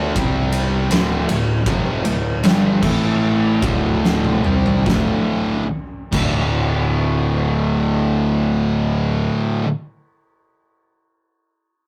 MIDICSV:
0, 0, Header, 1, 4, 480
1, 0, Start_track
1, 0, Key_signature, -1, "minor"
1, 0, Tempo, 758534
1, 1049, Time_signature, 4, 2, 24, 8
1, 1537, Tempo, 800000
1, 2497, Tempo, 842697
1, 6966, End_track
2, 0, Start_track
2, 0, Title_t, "Distorted electric guitar"
2, 0, Program_c, 0, 30
2, 0, Note_on_c, 0, 50, 108
2, 0, Note_on_c, 0, 57, 115
2, 0, Note_on_c, 0, 62, 122
2, 92, Note_off_c, 0, 50, 0
2, 93, Note_off_c, 0, 57, 0
2, 94, Note_off_c, 0, 62, 0
2, 101, Note_on_c, 0, 48, 89
2, 105, Note_on_c, 0, 55, 100
2, 108, Note_on_c, 0, 60, 117
2, 564, Note_off_c, 0, 48, 0
2, 566, Note_off_c, 0, 55, 0
2, 567, Note_off_c, 0, 60, 0
2, 575, Note_on_c, 0, 38, 96
2, 577, Note_on_c, 0, 45, 103
2, 583, Note_on_c, 0, 50, 102
2, 804, Note_off_c, 0, 38, 0
2, 805, Note_off_c, 0, 45, 0
2, 808, Note_off_c, 0, 50, 0
2, 814, Note_on_c, 0, 38, 57
2, 818, Note_on_c, 0, 45, 71
2, 1004, Note_off_c, 0, 38, 0
2, 1006, Note_off_c, 0, 45, 0
2, 1051, Note_on_c, 0, 41, 105
2, 1055, Note_on_c, 0, 48, 94
2, 1059, Note_on_c, 0, 53, 104
2, 1286, Note_off_c, 0, 41, 0
2, 1288, Note_off_c, 0, 48, 0
2, 1290, Note_off_c, 0, 53, 0
2, 1297, Note_on_c, 0, 38, 64
2, 1300, Note_on_c, 0, 45, 70
2, 1491, Note_off_c, 0, 38, 0
2, 1493, Note_off_c, 0, 45, 0
2, 1539, Note_on_c, 0, 43, 92
2, 1541, Note_on_c, 0, 50, 94
2, 1543, Note_on_c, 0, 55, 118
2, 1767, Note_off_c, 0, 43, 0
2, 1768, Note_off_c, 0, 50, 0
2, 1769, Note_off_c, 0, 55, 0
2, 1770, Note_on_c, 0, 45, 94
2, 1774, Note_on_c, 0, 52, 99
2, 1775, Note_on_c, 0, 57, 100
2, 2244, Note_off_c, 0, 45, 0
2, 2246, Note_off_c, 0, 52, 0
2, 2247, Note_off_c, 0, 57, 0
2, 2255, Note_on_c, 0, 38, 93
2, 2257, Note_on_c, 0, 45, 106
2, 2262, Note_on_c, 0, 50, 105
2, 2726, Note_off_c, 0, 38, 0
2, 2727, Note_off_c, 0, 45, 0
2, 2729, Note_off_c, 0, 50, 0
2, 2739, Note_on_c, 0, 48, 83
2, 2740, Note_on_c, 0, 55, 93
2, 2742, Note_on_c, 0, 60, 102
2, 2965, Note_off_c, 0, 48, 0
2, 2967, Note_off_c, 0, 55, 0
2, 2967, Note_on_c, 0, 38, 104
2, 2969, Note_off_c, 0, 60, 0
2, 2978, Note_on_c, 0, 45, 91
2, 2988, Note_on_c, 0, 50, 91
2, 3408, Note_off_c, 0, 38, 0
2, 3408, Note_off_c, 0, 45, 0
2, 3408, Note_off_c, 0, 50, 0
2, 3688, Note_on_c, 0, 38, 111
2, 3701, Note_on_c, 0, 45, 112
2, 3713, Note_on_c, 0, 50, 105
2, 5682, Note_off_c, 0, 38, 0
2, 5694, Note_off_c, 0, 45, 0
2, 5707, Note_off_c, 0, 50, 0
2, 6966, End_track
3, 0, Start_track
3, 0, Title_t, "Picked electric bass"
3, 0, Program_c, 1, 34
3, 0, Note_on_c, 1, 38, 97
3, 71, Note_off_c, 1, 38, 0
3, 99, Note_on_c, 1, 36, 92
3, 545, Note_off_c, 1, 36, 0
3, 566, Note_on_c, 1, 26, 102
3, 789, Note_off_c, 1, 26, 0
3, 819, Note_on_c, 1, 26, 89
3, 1038, Note_off_c, 1, 26, 0
3, 1054, Note_on_c, 1, 29, 95
3, 1278, Note_off_c, 1, 29, 0
3, 1305, Note_on_c, 1, 26, 76
3, 1528, Note_off_c, 1, 26, 0
3, 1547, Note_on_c, 1, 31, 98
3, 1762, Note_off_c, 1, 31, 0
3, 1776, Note_on_c, 1, 33, 106
3, 2230, Note_off_c, 1, 33, 0
3, 2252, Note_on_c, 1, 26, 97
3, 2709, Note_off_c, 1, 26, 0
3, 2730, Note_on_c, 1, 36, 89
3, 2953, Note_off_c, 1, 36, 0
3, 2971, Note_on_c, 1, 26, 90
3, 3105, Note_off_c, 1, 26, 0
3, 3692, Note_on_c, 1, 26, 104
3, 5488, Note_off_c, 1, 26, 0
3, 6966, End_track
4, 0, Start_track
4, 0, Title_t, "Drums"
4, 99, Note_on_c, 9, 51, 107
4, 101, Note_on_c, 9, 36, 105
4, 162, Note_off_c, 9, 51, 0
4, 164, Note_off_c, 9, 36, 0
4, 332, Note_on_c, 9, 51, 80
4, 395, Note_off_c, 9, 51, 0
4, 574, Note_on_c, 9, 51, 120
4, 585, Note_on_c, 9, 38, 127
4, 637, Note_off_c, 9, 51, 0
4, 648, Note_off_c, 9, 38, 0
4, 815, Note_on_c, 9, 51, 84
4, 879, Note_off_c, 9, 51, 0
4, 1052, Note_on_c, 9, 36, 122
4, 1053, Note_on_c, 9, 51, 106
4, 1116, Note_off_c, 9, 36, 0
4, 1116, Note_off_c, 9, 51, 0
4, 1296, Note_on_c, 9, 51, 87
4, 1360, Note_off_c, 9, 51, 0
4, 1541, Note_on_c, 9, 51, 106
4, 1552, Note_on_c, 9, 38, 127
4, 1601, Note_off_c, 9, 51, 0
4, 1612, Note_off_c, 9, 38, 0
4, 1775, Note_on_c, 9, 49, 94
4, 1776, Note_on_c, 9, 36, 94
4, 1835, Note_off_c, 9, 49, 0
4, 1836, Note_off_c, 9, 36, 0
4, 2254, Note_on_c, 9, 36, 123
4, 2254, Note_on_c, 9, 51, 80
4, 2314, Note_off_c, 9, 36, 0
4, 2314, Note_off_c, 9, 51, 0
4, 2507, Note_on_c, 9, 38, 78
4, 2564, Note_off_c, 9, 38, 0
4, 2619, Note_on_c, 9, 48, 76
4, 2676, Note_off_c, 9, 48, 0
4, 2733, Note_on_c, 9, 45, 95
4, 2790, Note_off_c, 9, 45, 0
4, 2856, Note_on_c, 9, 43, 95
4, 2913, Note_off_c, 9, 43, 0
4, 2972, Note_on_c, 9, 36, 113
4, 2985, Note_on_c, 9, 38, 85
4, 3029, Note_off_c, 9, 36, 0
4, 3042, Note_off_c, 9, 38, 0
4, 3691, Note_on_c, 9, 36, 106
4, 3692, Note_on_c, 9, 57, 93
4, 3748, Note_off_c, 9, 36, 0
4, 3749, Note_off_c, 9, 57, 0
4, 6966, End_track
0, 0, End_of_file